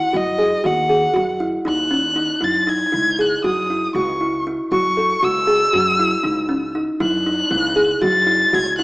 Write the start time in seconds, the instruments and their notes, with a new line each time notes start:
Already playing: violin F#5
0.13 upright bass F#2, kalimba F#4, violin D#5
0.38 kalimba G#4
0.64 upright bass D#2, kalimba F#4, violin F#5
0.89 kalimba G#4
1.14 upright bass F#2, kalimba F#4
1.40 kalimba E4
1.65 upright bass D#2, kalimba D#4, violin F#6
1.91 kalimba C#4
2.16 kalimba D#4
2.41 upright bass F#2, kalimba E4, violin A6
2.67 kalimba D#4, violin G#6
2.92 upright bass C#2, kalimba E4
3.19 kalimba G#4, violin F#6
3.44 upright bass F#2, kalimba F#4, violin D#6
3.70 kalimba E4
3.95 upright bass C#2, kalimba F#4, violin C#6
4.21 kalimba E4
4.47 kalimba E4
4.72 upright bass F#2, kalimba F#4, violin C#6
4.97 kalimba A4
5.23 upright bass C#2, kalimba F#4, violin E6
5.47 kalimba G#4
5.73 upright bass F#2, kalimba F#4
5.99 kalimba E4
6.23 upright bass C#2, kalimba D#4
6.49 kalimba C#4
6.75 kalimba D#4
7.00 upright bass F#2, kalimba E4, violin F#6
7.26 kalimba D#4
7.51 upright bass C#2, kalimba E4
7.76 kalimba G#4
8.02 upright bass F#2, kalimba F#4, violin A6
8.27 kalimba E4
8.53 upright bass C#2, kalimba F#4, violin G#6
8.78 kalimba E4, violin F#6